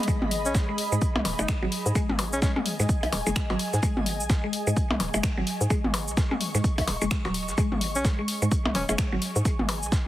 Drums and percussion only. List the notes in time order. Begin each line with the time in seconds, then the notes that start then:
0.03 closed hi-hat
0.08 kick, closed hi-hat, shaker
0.22 mid tom
0.31 closed hi-hat, open hi-hat
0.45 shaker
0.55 kick, snare, closed hi-hat, shaker
0.78 closed hi-hat, open hi-hat
0.92 shaker
1.01 kick, closed hi-hat, shaker
1.16 mid tom, percussion blips
1.25 closed hi-hat, open hi-hat, percussion blips
1.39 percussion blips, shaker
1.48 finger snap, kick, snare, closed hi-hat, shaker
1.72 closed hi-hat, open hi-hat
1.86 shaker
1.95 kick, closed hi-hat, shaker
2.09 mid tom
2.19 closed hi-hat, open hi-hat, percussion blips
2.33 shaker
2.42 kick, snare, closed hi-hat, shaker
2.56 mid tom
2.66 closed hi-hat, open hi-hat
2.80 snare, shaker
2.89 kick, closed hi-hat, shaker
3.03 open hi-hat, percussion blips
3.12 closed hi-hat, open hi-hat, percussion blips
3.26 closed hi-hat, shaker
3.36 finger snap, kick, snare, closed hi-hat, shaker
3.50 closed hi-hat, percussion blips
3.59 closed hi-hat, open hi-hat
3.73 snare, shaker
3.83 kick, closed hi-hat, shaker
3.97 mid tom
4.06 closed hi-hat, open hi-hat
4.20 shaker
4.30 kick, snare, closed hi-hat, shaker
4.53 closed hi-hat, open hi-hat
4.67 shaker
4.76 kick, closed hi-hat, shaker
4.91 mid tom, percussion blips
5.00 closed hi-hat, open hi-hat, percussion blips
5.14 percussion blips, shaker
5.23 finger snap, kick, snare, closed hi-hat, shaker
5.47 closed hi-hat, open hi-hat
5.61 shaker
5.70 kick, closed hi-hat, shaker
5.84 mid tom
5.94 closed hi-hat, open hi-hat, percussion blips
6.08 shaker
6.17 kick, snare, closed hi-hat, shaker
6.31 mid tom
6.41 closed hi-hat, open hi-hat
6.55 snare, shaker
6.64 kick, closed hi-hat, shaker
6.78 kick, open hi-hat, percussion blips
6.87 closed hi-hat, open hi-hat, percussion blips
7.02 closed hi-hat, shaker
7.11 finger snap, kick, snare, closed hi-hat, shaker
7.25 closed hi-hat, percussion blips
7.34 closed hi-hat, open hi-hat
7.48 snare, shaker
7.58 kick, closed hi-hat, shaker
7.72 mid tom
7.81 closed hi-hat, open hi-hat
7.95 shaker
8.05 kick, snare, closed hi-hat, shaker
8.28 closed hi-hat, open hi-hat
8.42 shaker
8.51 kick, closed hi-hat, shaker
8.66 mid tom, percussion blips
8.75 closed hi-hat, open hi-hat, percussion blips
8.89 percussion blips, shaker
8.98 finger snap, kick, snare, closed hi-hat, shaker
9.22 closed hi-hat, open hi-hat
9.36 shaker
9.45 kick, closed hi-hat, shaker
9.59 mid tom
9.69 closed hi-hat, open hi-hat, percussion blips
9.83 shaker
9.92 kick, snare, closed hi-hat, shaker